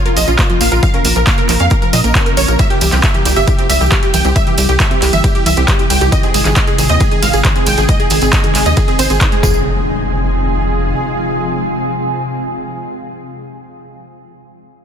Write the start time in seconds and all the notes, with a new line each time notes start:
Already playing: C#3 F3 A#3 F4 A#4
0.06 F4 A#4, closed hi-hat
0.16 A#1 F3 D#5, open hi-hat, tambourine
0.27 A#1 C#4 F4, closed hi-hat, tambourine
0.38 A#3 F4, kick, clap, closed hi-hat, tambourine
0.50 F3 F4, closed hi-hat
0.61 A#1 A#3 F5, open hi-hat, tambourine
0.72 A#1 F4 A#4, closed hi-hat, tambourine
0.83 F3 F5, kick, closed hi-hat, tambourine
0.94 C#4 A#4, closed hi-hat
1.04 A#1 A#3 A#4, open hi-hat, tambourine
1.16 A#1 F3 A#4, closed hi-hat, tambourine
1.27 A#3 F5, kick, clap, closed hi-hat, tambourine
1.38 A#4, closed hi-hat
1.49 A#1 F3 A#4, clap, open hi-hat, tambourine
1.59 F2 C#4 F5, closed hi-hat, tambourine
1.70 A#3 A#4, kick, closed hi-hat, tambourine
1.82 F3 A#4, closed hi-hat
1.93 A#2 F3 D#5, open hi-hat, tambourine
2.04 A#1 A#3 A#4, closed hi-hat, tambourine
2.15 A#4 C#5, kick, clap, closed hi-hat, tambourine
2.26 A#4, closed hi-hat
2.37 A#1 A#4 C#5, open hi-hat, tambourine
2.48 A#1 F3 A#4, closed hi-hat, tambourine
2.59 C3 E3 G3 E4 G4 E5, kick, closed hi-hat, ride, tambourine
2.70 G4, closed hi-hat
2.81 C2 E3 G4, open hi-hat, ride, tambourine
2.92 C2 C4 G4, clap, closed hi-hat, tambourine
3.03 G3 E5, kick, clap, closed hi-hat, ride, tambourine
3.14 E3 G4, closed hi-hat
3.25 C2 G3 G4, open hi-hat, ride, tambourine
3.36 G1 G4 E5, closed hi-hat, tambourine
3.47 E3 G4, kick, closed hi-hat, ride, tambourine
3.58 C4 G4, closed hi-hat
3.69 C2 G3 E5, open hi-hat, ride, tambourine
3.81 C2 E3 G4, closed hi-hat, tambourine
3.91 G3 G4, kick, clap, closed hi-hat, ride, tambourine
4.03 G4, closed hi-hat
4.14 C2 E3 G5, open hi-hat, ride, tambourine
4.24 C2 C4 G4, closed hi-hat, tambourine
4.36 G3 E5, kick, closed hi-hat, ride, tambourine
4.47 E3 G4, closed hi-hat
4.58 C2 G3 G4, open hi-hat, ride, tambourine
4.69 C2 G4, closed hi-hat, tambourine
4.79 E3 E5, kick, clap, closed hi-hat, ride, tambourine
4.91 C4 G4, closed hi-hat
5.02 C2 G3 G4, clap, open hi-hat, ride, tambourine
5.13 G1 E3 E5, closed hi-hat, tambourine
5.24 G3 G4, kick, closed hi-hat, ride, tambourine
5.35 G4, closed hi-hat
5.46 C2 E3 E5, open hi-hat, ride, tambourine
5.57 C2 C4 G4, closed hi-hat, tambourine
5.68 G3 G4, kick, clap, closed hi-hat, ride, tambourine
5.79 E3 G4, closed hi-hat
5.90 C2 G3 G5, open hi-hat, ride, tambourine
6.01 C2 G4, closed hi-hat, tambourine
6.12 D#3 G#3 D#4 G#4 D#5, kick, closed hi-hat, ride, tambourine
6.23 C4 G#4, closed hi-hat
6.34 G#1 G#3 G#4, open hi-hat, ride, tambourine
6.45 G#1 D#3 G#4, clap, closed hi-hat, tambourine
6.56 G#3 D#5, kick, clap, closed hi-hat, ride, tambourine
6.67 G#4, closed hi-hat
6.78 G#1 D#3 G#4, open hi-hat, ride, tambourine
6.89 D#2 C4 D#5, closed hi-hat, tambourine
7.00 G#3 G#4, kick, closed hi-hat, ride, tambourine
7.11 D#3 G#4, closed hi-hat
7.22 G#1 G#3 F5, open hi-hat, ride, tambourine
7.33 G#1 G#4, closed hi-hat, tambourine
7.44 D#3 G#4, kick, clap, closed hi-hat, ride, tambourine
7.56 C4 G#4, closed hi-hat
7.66 G#1 G#3 G5, open hi-hat, ride, tambourine
7.77 G#1 D#3 G#4, closed hi-hat, tambourine
7.89 G#3 D#5, kick, closed hi-hat, ride, tambourine
8.00 G#4, closed hi-hat
8.10 G#1 D#3 G#4, open hi-hat, ride, tambourine
8.21 G#1 C4 G#4, closed hi-hat, tambourine
8.33 G#3 D#5, kick, clap, closed hi-hat, ride
8.44 D#3 G#4, closed hi-hat
8.55 G#1 G#3 G#4, clap, open hi-hat, ride, tambourine
8.66 D#2 G#4 D#5, closed hi-hat, tambourine
8.77 D#3 G#4, kick, closed hi-hat, ride, tambourine
8.88 C4 G#4, closed hi-hat
8.99 G#1 C4 C5, open hi-hat, ride, tambourine
9.10 G#1 C4 G#4, closed hi-hat, tambourine
9.21 D#4 G#4, kick, clap, closed hi-hat, ride, tambourine
9.32 G#3 G#4, closed hi-hat
9.43 F1 C3 F3 G#3 F4 G#4, kick, tambourine, impact
9.54 tambourine